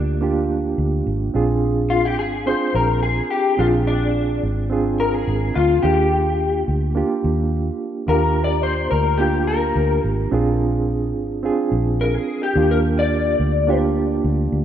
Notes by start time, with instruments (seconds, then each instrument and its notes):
Already playing: fingered electric bass D2, reed electric piano A#3 D4 F4 G4
0.21 reed electric piano A#3 D4 F4 G4
0.78 fingered electric bass D2
1.06 fingered electric bass G#1
1.34 fingered electric bass A#1, reed electric piano C4 D4 F4 G#4
1.90 clean electric guitar F4
2.05 clean electric guitar G4
2.19 fingered electric bass G#1, clean electric guitar G#4
2.46 reed electric piano C4 D4 F4 G#4, clean electric guitar C5
2.74 fingered electric bass A#1, clean electric guitar A#4
3.03 clean electric guitar G#4
3.30 clean electric guitar G4
3.57 fingered electric bass A#1, reed electric piano C4 D4 F4 G#4, clean electric guitar F4
3.87 clean electric guitar D4
4.43 fingered electric bass G#1
4.70 reed electric piano C4 D4 F4 G#4
5.00 clean electric guitar A#4
5.15 clean electric guitar G#4
5.28 fingered electric bass G#1
5.55 fingered electric bass D2, clean electric guitar F4
5.83 fingered electric bass D#2, reed electric piano A#3 D4 F4 G4, clean electric guitar G4
6.68 fingered electric bass D2
6.95 reed electric piano A#3 D4 F4 G4
7.24 fingered electric bass D#2
8.07 fingered electric bass D#2, reed electric piano A#3 D4 F4 G4, clean electric guitar A#4
8.44 clean electric guitar D5
8.63 clean electric guitar C5
8.91 fingered electric bass D2, clean electric guitar A#4
9.18 reed electric piano A#3 D4 F4 G4, clean electric guitar G4
9.47 clean electric guitar A#4
9.76 fingered electric bass D2
10.04 fingered electric bass G#1
10.31 fingered electric bass A#1, reed electric piano C4 D4 F4 G#4
11.16 fingered electric bass G#1
11.43 reed electric piano C4 D4 F4 G#4
11.72 fingered electric bass A#1
12.01 clean electric guitar A#4
12.14 clean electric guitar G#4
12.43 clean electric guitar G4
12.55 fingered electric bass D#2, reed electric piano A#3 D4 F4 G4
12.71 clean electric guitar A#4
12.99 clean electric guitar D5
13.40 fingered electric bass D2
13.67 reed electric piano A#3 D4 F4 G4
14.24 fingered electric bass D2
14.52 fingered electric bass D2